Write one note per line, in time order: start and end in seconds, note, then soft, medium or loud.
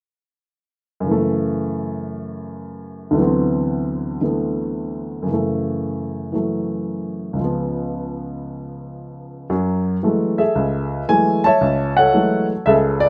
1.00 3.14 F#2 medium
1.00 3.16 C#3 soft
1.08 3.14 E3 soft
1.08 3.20 A3 medium
3.11 5.25 D2 medium
3.11 4.20 D3 soft
3.15 4.21 E3 medium
3.15 5.28 F#3 soft
3.20 4.23 B3 soft
3.20 5.30 C4 medium
4.21 5.27 D3 soft
4.21 5.28 E3 soft
4.21 5.28 A3 soft
4.21 5.29 B3 soft
5.23 7.36 F#2 soft
5.23 7.36 C#3 soft
5.30 6.31 E3 soft
5.30 6.34 A3 medium
6.32 7.38 E3 soft
6.32 7.39 F#3 soft
6.32 7.40 A3 soft
7.33 9.47 C#2 soft
7.33 9.49 C#3 soft
7.41 9.51 F3 soft
7.41 9.52 B3 soft
9.50 9.96 F#2 medium
9.50 9.96 F#3 medium
10.03 10.40 E3 soft
10.03 10.40 F#3 soft
10.03 10.40 G#3 soft
10.03 10.40 A3 medium
10.38 11.40 G#4 medium
10.38 11.40 A4 soft
10.38 11.10 E5 medium
10.55 11.01 C#2 medium
11.08 11.45 E3 medium
11.08 11.45 F#3 soft
11.08 11.46 G#3 soft
11.08 11.46 A3 medium
11.08 11.41 G#5 medium
11.44 11.98 C#5 medium
11.44 12.46 E5 medium
11.44 11.93 A5 loud
11.61 12.07 C#2 medium
11.97 12.66 A4 medium
11.97 12.99 C#5 medium
11.97 12.45 F#5 medium
12.14 12.51 E3 soft
12.14 12.51 F#3 soft
12.14 12.51 G#3 soft
12.14 12.51 A3 medium
12.66 13.09 C#2 medium
12.66 13.09 G#4 medium
12.66 13.09 A4 medium
12.66 12.74 E5 medium
13.00 13.09 D5 medium